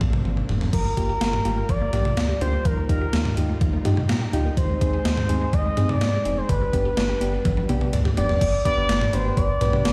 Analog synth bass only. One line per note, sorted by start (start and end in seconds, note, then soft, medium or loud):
0.01 0.18 A#1 loud
0.25 0.42 G#1 medium
0.49 0.66 F1 medium
0.73 0.90 G1 loud
0.97 1.14 G1 medium
1.21 1.38 G1 loud
1.45 1.62 G1 loud
1.69 1.86 G1 loud
1.93 2.10 A#1 loud
2.17 2.34 D2 medium
2.41 2.58 D2 medium
2.65 2.82 D#2 loud
2.89 3.06 D#2 medium
3.13 3.30 D#2 loud
3.37 3.54 D#2 loud
3.61 3.78 D#2 loud
3.85 4.02 G2 medium
4.09 4.26 A#2 medium
4.33 4.50 D2 medium
4.57 4.74 D#2 loud
4.81 4.98 D#2 loud
5.05 5.22 D#2 loud
5.29 5.46 D#2 loud
5.53 5.70 D#2 loud
5.77 5.94 G2 medium
6.01 6.18 G#2 medium
6.25 6.42 F1 medium
6.49 6.66 G1 loud
6.73 6.90 G1 loud
6.97 7.14 G1 loud
7.21 7.38 G1 loud
7.45 7.62 G1 loud
7.69 7.86 B1 medium
7.93 8.10 D2 medium
8.17 8.34 F1 medium
8.41 8.58 G1 loud
8.77 8.86 G1 medium
8.89 9.06 G1 loud
9.13 9.30 G1 loud
9.37 9.54 G1 loud
9.61 9.78 B1 medium
9.85 9.93 G1 loud